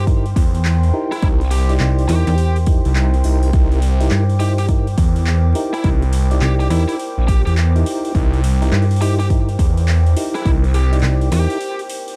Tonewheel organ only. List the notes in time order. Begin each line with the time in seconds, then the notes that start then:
0.07 D#4 E4 G4 A#4
0.93 D#4 E4 G4 A#4
1.22 D#4 E4 G4 A#4
1.69 D#4 E4 G4 D5
2.09 D#4 E4 G4 A#4
2.67 D#4 E4 G4 A#4
2.95 D#4 E4 G4 A#4
3.24 D#4 E4 G4 A#4
3.53 D#4 E4 G4 A#4
4.00 D#4 E4 G4 A#4
4.40 D#4 E4 G4 C5
4.68 D#4 E4 G4 A#4
5.55 D#4 E4 G4 A#4
5.84 D#4 E4 G4 A#4
6.31 D#4 E4 G4 D5
6.70 D#4 E4 G4 A#4
7.75 D#4 E4 G4 A#4
8.15 D#4 E4 G4 A#4
8.62 D#4 E4 G4 A#4
9.01 D#4 E4 G4 C5
9.30 D#4 E4 G4 A#4
10.16 D#4 E4 G4 A#4
10.45 D#4 E4 G4 A#4
10.92 D#4 E4 G4 D5
11.31 D#4 E4 G4 A#4